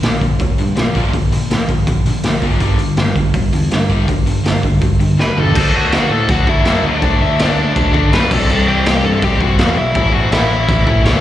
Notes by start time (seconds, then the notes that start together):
0.03 A#1 A#2 D3 F3, snare, open hi-hat
0.21 A#1 A#2 D3 F3, kick, open hi-hat
0.39 A#1 A#2 D3 F3, kick, open hi-hat
0.58 G2 A#2 D3 F3, open hi-hat
0.76 A#2 D3 F3, snare, open hi-hat
0.94 A#1 A#2 D3 F3 A#3, kick, open hi-hat
1.12 A#1 A#2 D3 F3, kick, open hi-hat
1.32 A#1 A#2 D3 F3, open hi-hat
1.50 A#1 A#2 D3 F3, snare, open hi-hat
1.69 A#1 A#2 D3 F3, kick, open hi-hat
1.87 A#1 A#2 D3 F3, kick, open hi-hat
2.06 A#1 A#2 D3 F3, open hi-hat
2.23 A#1 A#2 D3 F3, snare, open hi-hat
2.42 F#1 A#2 D3 F3 A#3, kick, open hi-hat
2.60 G1 G2 D3 G3, kick, open hi-hat
2.78 G1 G2 D3, open hi-hat
2.97 G1 G2 D3, snare, open hi-hat
3.15 G1 G2 D3, kick, open hi-hat
3.33 G1 G2 D3, kick, open hi-hat
3.53 E2 G2 D3, open hi-hat
3.71 G2 D3, snare, open hi-hat
3.89 G1 G2 D3 G3, kick, open hi-hat
4.08 G1 G2 D3, kick, open hi-hat
4.26 G1 G2 D3, open hi-hat
4.44 G1 G2 D3, snare, open hi-hat
4.63 G1 G2 D3, kick, open hi-hat
4.81 G1 G2 D3, kick, open hi-hat
4.99 G1 G2 D3, open hi-hat
5.17 G1 G2 D3 B4 B5, snare
5.36 G1 G2 D3 G3 A4 A5, floor tom
5.54 D2 D3 A3 D4 F#4, kick, crash
5.58 A4 A5
5.74 D2 F#4 F#5
5.92 D2 F#4 F#5, snare, crash
6.10 A2 A4 A5
6.28 D2 F#4 F#5, kick, crash
6.47 D3 A3 D4 E4 F#4 E5, kick
6.65 F#2 D3 A3 D4 F#4, snare, crash
6.84 D2 D4 D5
7.01 D2 D3 A3 D4 F#4, kick, crash
7.21 D2 E4 E5
7.39 D2 D4 D5, snare, crash
7.58 D2
7.76 D2, kick, crash
7.93 D3 A3 D4 F#4, kick
8.11 F#2 D3 A3 D4 F#4 B4 B5, snare, crash
8.30 C2 C3 E3 G3 C4 E4 A4 A5, kick, crash
8.49 C2 A4 A5, crash
8.68 C2 G4 G5
8.86 C2 G4 G5, snare, crash
9.04 G2 A4 A5
9.22 C2 C3 E3 G3 C4 E4 G4 G5, kick, crash
9.40 C3 E3 G3 C4 E4 F#4 F#5, kick
9.58 E2, snare, crash
9.77 B1 E4 E5
9.94 A1 A2 E3 A3 C#4 E4, kick, crash
10.13 A1 F#4 F#5
10.31 A1 E4 E5, snare, crash
10.49 A1
10.68 A1, kick, crash
10.86 A2 E3 A3 C#4 E4, kick
11.04 C#2 A2 E3 A3 C#4 E4 C#5 C#6, snare, crash